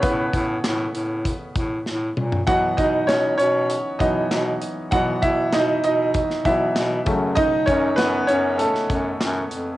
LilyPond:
<<
  \new Staff \with { instrumentName = "Grand piano" } { \time 4/4 \key b \mixolydian \tempo 4 = 98 <b b'>4 r2. | <fis' fis''>8 <dis' dis''>8 <cis' cis''>8 <cis' cis''>4 <dis' dis''>8 r4 | <fis' fis''>8 <e' e''>8 <dis' dis''>8 <dis' dis''>4 <e' e''>8 r4 | <dis' dis''>8 <cis' cis''>8 <b b'>8 <cis' cis''>8 <a a'>2 | }
  \new Staff \with { instrumentName = "Grand piano" } { \clef bass \time 4/4 \key b \mixolydian <cis b a'>8 r2. r8 | <e fis b>2~ <e fis b>8 <e fis b>8 r4 | <e fis b>4. r4 <e fis b>8 r8 <cis fis a>8~ | <cis fis a>4 r2. | }
  \new Staff \with { instrumentName = "Bass clarinet" } { \clef bass \time 4/4 \key b \mixolydian a,8 a,8 a,8 a,8. r16 a,8 a,8 ais,8 | b,8 b,8 b,8 b,8. r16 b,8 b,8 r8 | b,8 b,8 b,8 b,8. r16 b,8 b,8 fis,8~ | fis,8 fis,8 fis,8 fis,8. r16 fis,8 fis,8 f,8 | }
  \new DrumStaff \with { instrumentName = "Drums" } \drummode { \time 4/4 <hh bd>8 <hh bd>8 <hc hh sn>8 hh8 <hh bd>8 <hh bd>8 sn8 toml16 tomfh16 | <hh bd>8 <hh bd>8 <hc hh sn>8 hh8 hh8 <hh bd>8 <hc hh sn>8 hh8 | <hh bd>8 <hh bd>8 <hc hh sn>8 hh8 <hh bd>16 sn16 <hh bd>8 <hc hh sn>8 <hh bd>8 | <hh bd>8 <hh bd>8 <hc hh sn>8 hh8 hh16 sn16 <hh bd>8 <hc hh sn>8 hh8 | }
>>